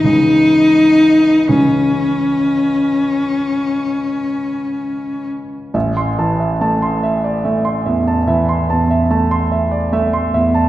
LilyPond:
<<
  \new Staff \with { instrumentName = "Grand piano" } { \time 12/8 \key cis \minor \tempo 4. = 45 <cis, e gis cis'>4. <cis, e gis cis'>1~ <cis, e gis cis'>8 | \key a \minor e''16 c'''16 a''16 e''16 a''16 c'''16 e''16 d''16 e''16 c'''16 e''16 a''16 e''16 c'''16 a''16 e''16 a''16 c'''16 e''16 d''16 e''16 c'''16 e''16 a''16 | }
  \new Staff \with { instrumentName = "Grand piano" } { \clef bass \time 12/8 \key cis \minor r1. | \key a \minor a,,8 e8 a4 a8 e,8 e8 e,8 a4 a8 e,8 | }
  \new Staff \with { instrumentName = "Cello" } { \time 12/8 \key cis \minor dis'4. cis'1 r8 | \key a \minor r1. | }
>>